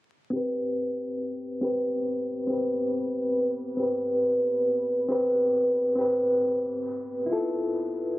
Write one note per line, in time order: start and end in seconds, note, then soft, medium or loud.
0.30 1.57 C4 medium
0.30 1.59 G4 medium
0.30 8.19 B4 medium
0.36 1.60 B4 medium
1.61 2.45 C4 medium
1.61 2.45 G4 medium
1.61 2.46 B4 medium
2.47 3.75 C4 medium
2.47 3.76 G4 medium
2.53 3.77 B4 medium
3.77 5.05 C4 medium
3.77 5.06 G4 medium
3.83 5.08 B4 medium
5.09 5.92 C4 medium
5.09 5.93 G4 medium
5.09 5.94 B4 medium
5.95 7.22 C4 medium
5.95 7.24 G4 medium
6.01 7.25 B4 medium
7.26 8.19 E4 medium
7.26 8.19 F4 medium
7.33 8.19 A4 medium